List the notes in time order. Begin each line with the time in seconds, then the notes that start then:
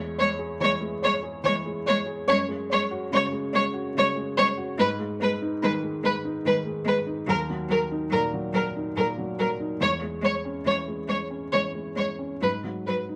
Already playing: E2 G#3
0.18 G#3 C#5
0.39 G#4
0.60 E3 G#3 C#5
0.81 G#3
1.02 G#3 C#5
1.23 G#4
1.44 E3 G#3 C#5
1.66 G#3
1.86 G#3 C#5
2.06 G#4
2.28 F#2 G#3 C#5
2.49 G#3
2.70 G#3 C#5
2.91 F#4
3.12 C#3 G#3 C#5
3.32 G#3
3.53 G#3 C#5
3.74 F#4
3.95 C#3 G#3 C#5
4.16 G#3
4.37 G#3 C#5
4.58 F#4
4.78 G#2 G#3 B4
4.99 G#3
5.20 G#3 B4
5.42 D#4
5.62 D#3 G#3 B4
5.83 G#3
6.03 G#3 B4
6.25 D#4
6.45 D#3 G#3 B4
6.66 G#3
6.85 G#3 B4
7.07 D#4
7.27 D#2 F#3 A#4
7.50 F#3
7.69 F#3 A#4
7.91 D#4
8.10 A#2 F#3 A#4
8.34 F#3
8.53 F#3 A#4
8.76 D#4
8.96 A#2 F#3 A#4
9.18 F#3
9.39 F#3 A#4
9.60 D#4
9.80 E2 G#3 C#5
10.02 G#3
10.22 G#3 C#5
10.45 C#4
10.65 E3 G#3 C#5
10.88 G#3
11.08 G#3 C#5
11.31 C#4
11.53 E3 G#3 C#5
11.75 G#3
11.96 G#3 C#5
12.19 C#4
12.41 G#2 F#3 B4
12.64 F#3
12.86 F#3 B4
13.09 D#4